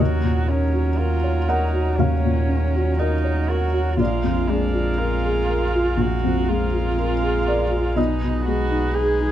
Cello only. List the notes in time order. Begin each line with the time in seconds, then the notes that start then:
0.00 F#4
0.50 C#4
0.97 F4
1.49 D#4
1.98 C#4
2.99 D#4
3.50 F#4
3.99 F4
4.50 D4
4.98 F4
5.99 F#4
6.48 F4
7.97 D#4
8.45 F#4
8.96 G#4